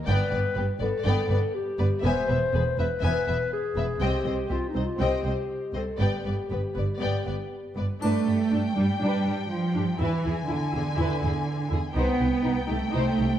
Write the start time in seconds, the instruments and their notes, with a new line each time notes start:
0.06 double bass section G1, cello section G2, viola section B3, clarinet B4, violin section D5 G5
0.30 double bass section G1, cello section G2, viola section B3, violin section B4 D5
0.54 double bass section G1, cello section G2, violin section G4 B4
0.59 viola section B3
0.80 double bass section G1, cello section G2, viola section B3, clarinet A4, violin section B4 D5
1.04 double bass section G1, cello section G2, viola section B3, clarinet A4, violin section D5 G5
1.29 double bass section G1, cello section G2, viola section B3, violin section B4 D5
1.55 clarinet G4
1.78 double bass section G1, cello section G2, viola section B3, violin section B4 D5
2.04 double bass section E1, cello section E2, viola section B3, clarinet C5, violin section E5 G#5
2.28 double bass section E1, cello section E2, viola section B3, violin section B4 E5
2.53 double bass section E1, cello section E2, viola section B3, violin section G#4 B4
2.78 double bass section E1, cello section E2, viola section B3, violin section B4 E5, clarinet B4
3.01 double bass section E1, cello section E2, viola section B3, clarinet B4, violin section E5 G#5
3.27 double bass section E1, cello section E2, viola section B3, violin section B4 E5
3.53 clarinet G#4
3.75 double bass section E1, cello section E2, viola section B3, violin section B4 E5
4.00 cello section C2, double bass section C2, viola section C4, clarinet G4, violin section D#5 G5
4.24 cello section C2, double bass section C2, viola section C4, violin section C5 D#5
4.49 cello section C2, double bass section C2, viola section C4, clarinet F4, violin section G4 C5
4.69 clarinet D#4
4.74 double bass section C2, cello section C2, viola section C4, violin section C5 D#5
4.85 clarinet F4
4.99 cello section C2, double bass section C2, viola section C4, clarinet G4, violin section D#5 G5
5.23 cello section C2, double bass section C2, viola section C4, violin section C5 D#5
5.74 cello section C2, double bass section C2, viola section C4, clarinet A4, violin section C5 D#5
5.99 double bass section G1, cello section G2, viola section B3, clarinet G4, violin section D5 G5
6.25 double bass section G1, cello section G2, viola section B3, violin section B4 D5
6.50 double bass section G1, cello section G2, viola section B3, violin section G4 B4
6.75 double bass section G1, cello section G2, viola section B3, violin section B4 D5
6.99 double bass section G1, cello section G2, viola section B3, violin section D5 G5
7.26 double bass section G1, cello section G2, viola section B3, violin section B4 D5
7.76 double bass section G1, cello section G2, viola section B3, violin section B4 D5
8.01 double bass section G2, cello section A3, viola section D4, violin section B4 G5, triangle
8.27 double bass section G2, viola section D4, violin section G4
8.51 double bass section G2, viola section D4, violin section D4
8.76 double bass section G2, cello section G3, viola section D4, violin section G4
9.01 double bass section G2, cello section G3, viola section D4, violin section B4
9.26 double bass section G2, viola section D4, violin section G4
9.50 cello section F3
9.75 double bass section G2, viola section D4, violin section G4
9.98 double bass section E2, cello section E3, viola section E4, violin section B4 G#5
10.23 double bass section E2, viola section E4, violin section G#4
10.48 double bass section E2, cello section D3, viola section E4, violin section E4
10.72 double bass section E2, viola section E4
10.76 violin section G#4
10.96 double bass section E2, viola section E4, violin section B4
11.20 double bass section E2, viola section E4
11.25 violin section G#4
11.69 double bass section E2, viola section E4, violin section G#4
11.93 double bass section C2, cello section B3, viola section D#4, violin section C5 G5
12.18 double bass section C2, viola section D#4, violin section G4
12.43 double bass section C2, viola section D#4, violin section D#4
12.67 double bass section C2, cello section A3, viola section D#4, violin section G4
12.91 double bass section C2, cello section A3, viola section D#4, violin section C5
13.17 double bass section C2, viola section D#4, violin section G4